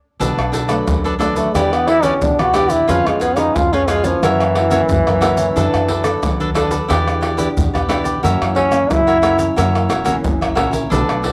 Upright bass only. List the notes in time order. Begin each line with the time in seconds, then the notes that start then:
0.20 B1
0.37 B1
0.88 D#2
1.54 E2
2.22 E2
2.39 E2
2.89 F2
3.07 F2
3.56 F2
4.23 F#2
4.90 F#2
5.07 F#2
5.56 F#2
5.74 F#2
6.23 D#2
6.90 E2
7.57 E2
7.75 E2
8.24 F#2
8.41 F#2
8.91 F#2
9.58 F#2
9.90 E1
10.25 F#1
10.57 A#1
10.91 B1
11.09 B1